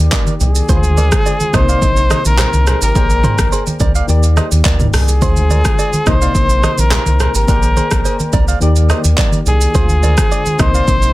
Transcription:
Already playing: D#3 A#3 G4 D5
0.11 A#4 D5, kick, clap, low conga, shaker
0.27 high conga, shaker
0.41 C2 G#4, low conga, shaker
0.55 shaker
0.68 D2 D3 G#3 F4 G#4 B4 C5, kick, shaker
0.77 C5
0.84 high conga, shaker
0.97 A#4 D5, high conga, shaker
1.12 kick, cross-stick, shaker
1.26 G#4 D5, shaker
1.40 high conga, shaker
1.53 C2 C3 A#3 D#4 C5 D#5, kick, cross-stick, high conga, low conga, shaker
1.69 D5 F5, shaker
1.82 A#1, kick, shaker
1.97 shaker
2.11 C5 D#5, cross-stick, high conga, shaker
2.25 A#1 A#4, high conga, shaker
2.37 G4 C5, cross-stick, clap, low conga, shaker
2.53 C2, high conga, shaker
2.67 G#4 A#4 C5, cross-stick, low conga, shaker
2.82 G#1 G4 A#4, shaker
2.94 A#1 A#3 G4 G#4 A#4 C5 D5 G5, kick, shaker
3.10 high conga, shaker
3.24 G#4 C5, mid tom, high conga, shaker
3.38 A#1, kick, cross-stick, shaker
3.52 G#4 C5, shaker
3.67 high conga, shaker
3.80 C2 A#4 D5, kick, high conga, low conga, shaker
3.95 D5 F5, shaker
4.07 D#2 D#3 A#3 G4 D5, shaker
4.23 shaker
4.37 C5 D#5, cross-stick, high conga, shaker
4.52 D#2, high conga, shaker
4.64 D2 A#4 D5, kick, clap, low conga, shaker
4.79 mid tom, high conga, shaker
4.94 C2 G#4, cross-stick, open hi-hat, low conga, shaker
5.08 shaker
5.21 D2 D3 G#3 F4 G#4 C5, kick, shaker
5.36 high conga, shaker
5.50 A#4 D5, high conga, shaker
5.65 kick, cross-stick, shaker
5.79 G#4 D5, shaker
5.93 high conga, shaker
6.06 C2 C3 A#3 D#4 A#4 C5 D#5, kick, cross-stick, high conga, low conga, shaker
6.15 C5
6.22 D5 F5, shaker
6.35 A#1, kick, shaker
6.50 shaker
6.63 C5 D#5, cross-stick, high conga, shaker
6.78 A#1 A#4, high conga, shaker
6.90 G4 C5, cross-stick, clap, low conga, shaker
7.06 C2, high conga, shaker
7.20 G#4 A#4 C5, cross-stick, low conga, shaker
7.35 G#1 G4 A#4, shaker
7.47 A#1 A#3 G4 G#4 A#4 C5 D5 F#5, kick, shaker
7.56 G5
7.63 high conga, shaker
7.77 G#4 C5, high conga, shaker
7.91 A#1, kick, cross-stick, shaker
8.05 G#4 C5, shaker
8.20 high conga, shaker
8.33 C2 A#4 D5, kick, high conga, low conga, shaker
8.48 D5 F5, shaker
8.60 D#2 D#3 A#3 G4 D5, shaker
8.76 shaker
8.90 C5 D#5, cross-stick, high conga, shaker
9.04 D#2, high conga, shaker
9.17 A#4 D5, kick, clap, low conga, shaker
9.32 high conga, shaker
9.46 C2 G#4, low conga, shaker
9.61 shaker
9.73 D2 D3 G#3 F4 G#4 C5, kick, shaker
9.89 high conga, shaker
10.03 A#4 D5, high conga, shaker
10.18 kick, cross-stick, shaker
10.32 G#4 D5, shaker
10.46 high conga, shaker
10.58 C2 C3 A#3 D#4 C5 D#5, kick, cross-stick, high conga, low conga, shaker
10.75 D5 F5, shaker
10.88 A#1, kick, shaker
11.02 shaker

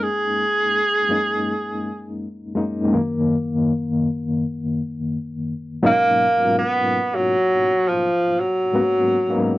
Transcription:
Already playing: F#2 G#3 A#3 C#4 D#4
0.02 G#4
1.09 F#2 G#3 A#3 C#4 D#4
2.55 F#2 G#3 A#3 C#4 D#4
2.92 F#2 D#3 A#3
5.83 G#2 B2 F#3 A#3 C#4 D#4
6.39 G#2 F#3 B3 C#4 F4 A#4
6.58 B3
7.15 F#3
7.88 F3
8.39 F#3
8.73 G#2 F#3 A#3 B3 C#4 F#4
9.29 G#2 F#3 A#3 B3 C#4 D#4

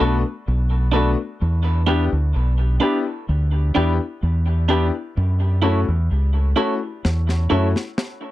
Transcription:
0.00 B1 A3 B3 D4 F#4 A4 B4
0.48 B1
0.92 A3 B3 D4 F#4 A4 B4
1.42 E2
1.86 B3 D4 E4 G4 B4
2.13 D2
2.36 B1
2.80 B3 D4 E4 G4 B4
3.29 D2
3.75 E2 B3 D4 E4 G4 B4
4.23 E2
4.69 B3 D4 E4 G4 B4
5.17 F#2
5.62 A3 C#4 E4 F#4 A4 C#5
5.89 E2
6.11 C#2
6.56 A3 C#4 E4 F#4 A4 C#5
7.05 E2, snare
7.29 snare
7.50 F#2 A3 C#4 E4 F#4 A4 C#5
7.76 snare
7.98 snare

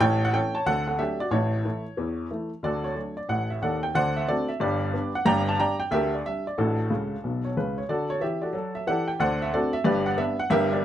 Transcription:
0.00 A1 A2 C#5 G5
0.25 F#5
0.33 E3 A3 C#4 C#5 G5
0.55 C#5 A5
0.66 D2 D3 A4 F#5
0.88 A4 F#5
0.98 F#3 A3 D4 G4 E5
1.20 F#4 D5
1.31 A1 A2 E4 C#5
1.65 E3 A3 E4
1.97 E2 E3
2.31 E3 A3 E4
2.63 D2 D3 F#4 A4 D5
2.84 C#5
2.95 F#3 A3 D4
3.17 D5
3.28 A1 A2 F#5
3.50 E5
3.62 D#2 D#3 A4 D5 F#5
3.83 G5
3.95 D2 D3 C5 D5 F#5
4.16 E5
4.28 A3 C4 D4 F#4 A4 D5
4.48 E5
4.60 G1 G2 G4 B4 D5
4.94 G3 B3 D4
5.15 F#5
5.25 G1 G2 D5 G5 A#5
5.49 A5
5.59 G3 D4 D5 G5 A#5
5.80 G5
5.91 D2 D3 G4 A#4 E5
6.15 D5
6.26 G3 D4 E5
6.47 D5
6.58 A1 A2 D4 F#4 A4
6.90 C#2 C#3
7.24 B1 B2
7.45 C#5
7.57 C#2 C#3 B4
7.78 C#5
7.89 D3 F#4 A4 D5
8.10 C#5
8.21 E3 G4 E5
8.42 F#4 A4 D5
8.53 F#3 A4
8.75 E5
8.87 E3 G4 A4 D5 F#5
9.08 G5
9.19 D2 D3 C5 D5 F#5
9.42 E5
9.53 A3 C4 D4 F#4 A4 D5
9.73 E5
9.84 G1 G2 G4 B4 D5
10.06 F#5
10.17 G3 B3 D4 E5
10.40 F#5
10.50 G1 G2 G4 A#4 E5
10.72 G4 A#4 D5

